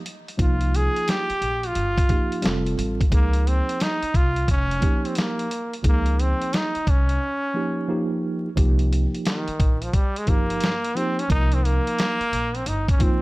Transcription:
0.06 closed hi-hat
0.28 closed hi-hat
0.37 upright bass C2, tine electric piano F3 A#3 D#4 F4, trombone F4, kick, closed hi-hat
0.61 closed hi-hat
0.74 trombone G#4, closed hi-hat
0.96 closed hi-hat
1.08 trombone G4, snare, closed hi-hat
1.29 muted upright bass stroke, closed hi-hat
1.41 upright bass A#1, closed hi-hat
1.63 trombone F4, closed hi-hat
1.75 upright bass G1, closed hi-hat
1.98 kick, closed hi-hat
2.08 tine electric piano F3 A#3 D#4 G4, kick, closed hi-hat
2.32 closed hi-hat
2.42 upright bass F1, tine electric piano G3 C4 F4 A4, snare, closed hi-hat
2.66 closed hi-hat
2.78 upright bass A1, closed hi-hat
3.01 kick, closed hi-hat
3.10 upright bass C#2, tine electric piano F3 A#3 D#4 G#4, trombone A#3, kick, closed hi-hat
3.33 closed hi-hat
3.47 trombone C4, closed hi-hat
3.69 closed hi-hat
3.80 trombone D#4, snare, closed hi-hat
4.02 muted upright bass stroke, closed hi-hat
4.14 upright bass C2, trombone F4, kick, closed hi-hat
4.36 closed hi-hat
4.48 upright bass F1, trombone C#4, kick, closed hi-hat
4.71 closed hi-hat
4.81 tine electric piano F3 A#3 D#4 G4, kick, closed hi-hat
5.05 trombone C4, closed hi-hat
5.15 trombone A#3, snare, closed hi-hat
5.39 closed hi-hat
5.51 closed hi-hat
5.74 closed hi-hat
5.83 upright bass C#2, tine electric piano F3 A#3 D#4 G#4, kick, closed hi-hat
5.87 trombone A#3
6.06 closed hi-hat
6.19 trombone C4, closed hi-hat
6.42 closed hi-hat
6.53 trombone D#4, snare, closed hi-hat
6.75 muted upright bass stroke, closed hi-hat
6.87 upright bass C2, trombone C#4, kick, closed hi-hat
7.09 closed hi-hat
7.54 tine electric piano F3 A#3 D#4 G4
7.87 tine electric piano F3 A#3 D#4 G4
8.56 upright bass C2, tine electric piano F3 A#3 D#4 G4, kick, closed hi-hat
8.79 closed hi-hat
8.93 closed hi-hat
9.15 closed hi-hat
9.25 trombone D#3, snare, closed hi-hat
9.48 muted upright bass stroke, closed hi-hat
9.59 upright bass A#1, kick, closed hi-hat
9.82 trombone F3, closed hi-hat
9.93 trombone G3, kick, closed hi-hat
10.16 trombone G#3, closed hi-hat
10.27 upright bass G1, tine electric piano F3 A#3 D#4 G4, trombone A#3, kick, closed hi-hat
10.50 closed hi-hat
10.60 snare, closed hi-hat
10.84 closed hi-hat
10.95 tine electric piano F3 A#3 D#4 G4, trombone C4, closed hi-hat
11.19 trombone C#4, closed hi-hat
11.29 upright bass C2, tine electric piano F3 A#3 D#4 A#4, trombone D#4, kick, closed hi-hat
11.52 trombone C4, closed hi-hat
11.65 trombone A#3, closed hi-hat
11.87 closed hi-hat
11.99 snare, closed hi-hat
12.20 muted upright bass stroke, closed hi-hat
12.32 upright bass A#1, closed hi-hat
12.55 trombone C4, closed hi-hat
12.66 upright bass G1, trombone D#4, closed hi-hat
12.88 trombone C#4, kick, closed hi-hat
12.99 tine electric piano F3 A#3 D#4 F4, trombone C4, kick, closed hi-hat

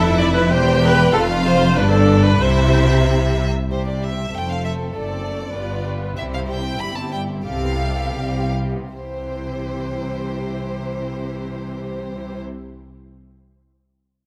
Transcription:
Already playing: double bass section F1, cello section F2, violin section E4 E5, viola section A4
0.19 viola section D5
0.35 viola section B4
0.50 double bass section E1, cello section E2, violin section G4 G5, viola section C5
0.82 viola section B4
1.13 double bass section F1, cello section F2, violin section F4 F5, viola section A4
1.44 viola section C5
1.77 double bass section G1, cello section G2, violin section D4 D5, viola section B4
1.92 viola section A4
2.24 viola section B4
2.40 double bass section C2, cello section C3, violin section E4 E5, viola section C5
3.69 double bass section C2, cello section C3, violin section G3 G4 C5
3.86 violin section C4 D5
4.02 violin section G3 E5
4.16 violin section C4
4.32 double bass section F1, cello section F2, violin section A3 A4 G5, viola section C5
4.49 violin section C4 F5
4.63 violin section A3 E5
4.78 violin section C4
4.94 double bass section F#1, cello section F#2, violin section A3 D5, viola section A4
5.08 violin section C4
5.25 violin section A3
5.40 violin section C4
5.55 double bass section G1, cello section G2, violin section G3 F4, viola section B4
5.71 violin section B3
5.86 violin section G3
6.01 violin section B3
6.16 double bass section C2, cello section C3, violin section G3 E4 E5, viola section C5
6.33 violin section C4 F5
6.47 violin section G3 G5
6.62 violin section C4
6.78 double bass section G1, cello section G2, violin section G3 B5, viola section G4
6.94 violin section C4 A5
7.11 violin section G3 G5
7.27 violin section C4
7.43 double bass section C2, cello section C3, violin section G3 G4 F5, viola section A4
7.62 violin section B3
7.78 violin section G3
7.97 violin section B3
8.15 double bass section C2, cello section C3, violin section G3, viola section G4
8.35 violin section B3
8.52 violin section G3
8.72 violin section B3
8.90 double bass section C2, cello section C3, viola section E3 E4, violin section G4 C5

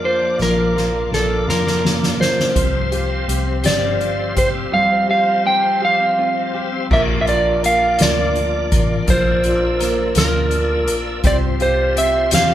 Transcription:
Already playing: fingered electric bass F2, clean electric guitar F3 A#3, grand piano A#3 F4, tonewheel organ A#3 D5 F5 D6
0.03 clean electric guitar D4, grand piano F4, electric slide guitar C5
0.21 clean electric guitar F3
0.39 fingered electric bass A#1, grand piano F3, clean electric guitar F3, electric slide guitar A#4, snare
0.57 clean electric guitar F3
0.76 clean electric guitar A#3, grand piano F4, snare
0.94 clean electric guitar F3
1.12 fingered electric bass A#1, grand piano A#3, clean electric guitar D4, electric slide guitar A4, snare
1.30 clean electric guitar F3
1.47 fingered electric bass F2, clean electric guitar F3, grand piano F4, electric slide guitar A#4, snare
1.67 clean electric guitar F3, snare
1.83 grand piano A#3, clean electric guitar A#3, snare
2.02 clean electric guitar F3, snare
2.20 clean electric guitar D4, grand piano F4, electric slide guitar C5, snare
2.38 clean electric guitar F3, snare
2.55 fingered electric bass C2, clean electric guitar F3, grand piano C4, tonewheel organ G4 C5 C6, kick, closed hi-hat
2.75 clean electric guitar C4
2.92 clean electric guitar F4, grand piano G4, closed hi-hat
3.11 clean electric guitar C4
3.28 fingered electric bass C2, grand piano C4, clean electric guitar G4, closed hi-hat
3.47 clean electric guitar C4
3.64 fingered electric bass G1, clean electric guitar F3, grand piano G4, electric slide guitar D5, snare, closed hi-hat
3.83 clean electric guitar C4
4.00 grand piano C4, clean electric guitar F4, closed hi-hat
4.19 clean electric guitar C4
4.37 grand piano G4, clean electric guitar G4, electric slide guitar C5, kick, closed hi-hat
4.55 clean electric guitar C4
4.72 clean electric guitar F3, grand piano G3, electric slide guitar F5
4.92 clean electric guitar C4
5.09 clean electric guitar F4, grand piano G4, electric slide guitar F5
5.28 clean electric guitar C4
5.45 grand piano C4, clean electric guitar G4, electric slide guitar G5
5.64 clean electric guitar C4
5.82 clean electric guitar F3, grand piano G4, electric slide guitar F5
6.00 clean electric guitar C4
6.18 grand piano C4, clean electric guitar F4
6.36 clean electric guitar C4
6.54 grand piano G4, clean electric guitar G4
6.72 clean electric guitar C4
6.90 fingered electric bass A#1, clean electric guitar F3 A#4, grand piano A#3, tonewheel organ F4 A#4 D5 D6, electric slide guitar E5, kick, crash
7.21 electric slide guitar E5
7.27 clean electric guitar D4, grand piano F4, electric slide guitar D5, closed hi-hat
7.63 grand piano A#3, clean electric guitar A#4, electric slide guitar F5, closed hi-hat
7.99 fingered electric bass D2, clean electric guitar A#3, grand piano F4, electric slide guitar D5, snare, closed hi-hat
8.35 clean electric guitar D4, closed hi-hat
8.72 fingered electric bass A1, clean electric guitar A#4, kick, closed hi-hat
9.07 fingered electric bass A#1, clean electric guitar F3 A#4, grand piano F3, electric slide guitar C5, tonewheel organ E6, kick, closed hi-hat
9.44 clean electric guitar D4, grand piano F4, closed hi-hat
9.80 grand piano A#3, clean electric guitar A#4, snare, closed hi-hat
10.15 fingered electric bass D2, clean electric guitar A#3, grand piano F4, electric slide guitar A#4, snare, closed hi-hat
10.51 clean electric guitar D4, closed hi-hat
10.87 fingered electric bass A#1, clean electric guitar A#4, closed hi-hat
11.24 fingered electric bass C2, grand piano C4, clean electric guitar G4, tonewheel organ G4 C5 C6, electric slide guitar D5, kick, closed hi-hat
11.60 clean electric guitar F4, grand piano G4, electric slide guitar C5, closed hi-hat
11.97 grand piano C4, clean electric guitar G4, electric slide guitar E5, closed hi-hat
12.31 fingered electric bass E2, clean electric guitar C4, grand piano G4, electric slide guitar F5, snare, closed hi-hat

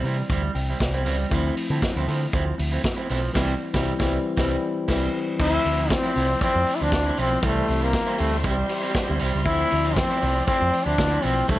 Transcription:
Already playing: tine electric piano E3 G3 C4 E4
0.03 picked electric bass C3, clean electric guitar G3 C4 E4, open hi-hat
0.19 muted clean electric guitar stroke
0.30 picked electric bass D2, clean electric guitar G3 C4 E4, kick, closed hi-hat
0.44 muted clean electric guitar stroke
0.55 picked electric bass C2, tine electric piano G5, muted clean electric guitar stroke, open hi-hat
0.70 clean electric guitar G3 C4 E4
0.80 picked electric bass C2, tine electric piano D5, muted clean electric guitar stroke, kick, snare, closed hi-hat
0.94 clean electric guitar G3 C4 E4, tine electric piano C5
1.05 picked electric bass C#2, clean electric guitar G3 C4 E4, open hi-hat
1.19 muted clean electric guitar stroke
1.30 picked electric bass D2, tine electric piano F3 A3 C4 E4, clean electric guitar F3 C4 E4, kick, closed hi-hat
1.57 open hi-hat
1.70 picked electric bass D3, clean electric guitar F3 C4 E4
1.82 muted clean electric guitar stroke, kick, snare, closed hi-hat
1.96 picked electric bass D2, clean electric guitar F3 C4 E4
2.08 picked electric bass D3, clean electric guitar F3 C4 E4, open hi-hat
2.22 muted clean electric guitar stroke
2.33 picked electric bass D2, clean electric guitar F3 C4 E4, kick, closed hi-hat
2.46 muted clean electric guitar stroke
2.58 picked electric bass D2, muted clean electric guitar stroke, open hi-hat
2.72 clean electric guitar F3 C4 E4
2.84 kick, snare, closed hi-hat
2.97 clean electric guitar F3 C4 E4
3.10 picked electric bass B1, clean electric guitar F3 C4 E4, open hi-hat
3.23 muted clean electric guitar stroke
3.33 picked electric bass C2, tine electric piano E3 G3 C4 E4, clean electric guitar G3 C4 E4, kick, snare, crash
3.73 picked electric bass C2, tine electric piano E3 G3 C4 E4, clean electric guitar G3 C4 E4, kick, snare
3.99 picked electric bass C2, tine electric piano E3 G3 C4 E4, clean electric guitar G3 C4 E4, kick, snare
4.37 picked electric bass C2, tine electric piano E3 G3 C4 E4, clean electric guitar G3 C4 E4, kick, snare
4.88 picked electric bass C2, tine electric piano E3 G3 C4 E4, clean electric guitar G3 C4 E4, kick, snare, crash
5.38 picked electric bass D2, tine electric piano F3 A3 C4 E4, string section F3 D5 E5 C6, clean electric guitar F3 C4, trombone E4, kick, crash
5.42 clean electric guitar E4
5.65 picked electric bass D2, muted clean electric guitar stroke, open hi-hat
5.78 clean electric guitar F3 C4 E4
5.90 trombone C4, muted clean electric guitar stroke, kick, snare, closed hi-hat
6.03 clean electric guitar F3 C4 E4
6.15 picked electric bass C2, clean electric guitar F3 C4 E4, open hi-hat
6.29 muted clean electric guitar stroke
6.41 clean electric guitar F3 C4 E4, trombone C4, kick, closed hi-hat
6.55 picked electric bass F2, muted clean electric guitar stroke
6.67 muted clean electric guitar stroke, open hi-hat
6.75 trombone E4
6.81 picked electric bass D2, clean electric guitar F3 C4 E4, trombone D4
6.92 picked electric bass D2, muted clean electric guitar stroke, kick, snare, closed hi-hat
7.06 clean electric guitar F3 C4 E4
7.17 picked electric bass B1, clean electric guitar F3 C4 E4, trombone C4, open hi-hat
7.32 muted clean electric guitar stroke
7.41 picked electric bass C2, tine electric piano E3 G3 C4 E4, clean electric guitar G3 C4 E4, string section G4 C5, kick, closed hi-hat
7.46 trombone A3
7.68 picked electric bass C2, muted clean electric guitar stroke, open hi-hat
7.81 clean electric guitar G3 C4 E4, trombone A#3
7.93 kick, snare, closed hi-hat
8.06 clean electric guitar G3 C4 E4
8.18 picked electric bass D2, clean electric guitar G3 C4 E4, trombone A3, open hi-hat
8.32 muted clean electric guitar stroke
8.40 clean electric guitar G3, trombone A3, closed hi-hat
8.44 picked electric bass C2, trombone G3, clean electric guitar C4 E4, kick
8.58 muted clean electric guitar stroke
8.69 muted clean electric guitar stroke, open hi-hat
8.82 clean electric guitar G3 C4 E4
8.94 kick, snare, closed hi-hat
9.08 picked electric bass D2, clean electric guitar G3 C4 E4
9.19 picked electric bass C2, clean electric guitar G3 C4 E4, open hi-hat
9.34 picked electric bass C#2, muted clean electric guitar stroke
9.44 picked electric bass D2, tine electric piano F3 A3 C4 E4, clean electric guitar F3 C4 E4, string section F3 D5, trombone E4, kick, closed hi-hat
9.71 picked electric bass D2, muted clean electric guitar stroke, open hi-hat
9.84 clean electric guitar F3 C4 E4
9.96 trombone C4, muted clean electric guitar stroke, kick, snare, closed hi-hat
10.10 clean electric guitar F3 C4 E4
10.22 picked electric bass C2, clean electric guitar F3 C4 E4, open hi-hat
10.36 muted clean electric guitar stroke
10.47 clean electric guitar F3 C4 E4, trombone C4, kick, closed hi-hat
10.60 picked electric bass F2, muted clean electric guitar stroke
10.72 muted clean electric guitar stroke, open hi-hat
10.85 picked electric bass D2, clean electric guitar F3 C4 E4, trombone D4
10.98 picked electric bass D2, tine electric piano F3 A3 C4 E4, kick, snare, closed hi-hat
11.11 clean electric guitar F3 C4 E4
11.22 picked electric bass B1, clean electric guitar F3 C4 E4, trombone C4, open hi-hat
11.36 muted clean electric guitar stroke
11.47 picked electric bass C2, tine electric piano E3 G3 C4 D4, clean electric guitar G3 C4 E4, trombone A3, string section G4 C5 E5, kick, closed hi-hat

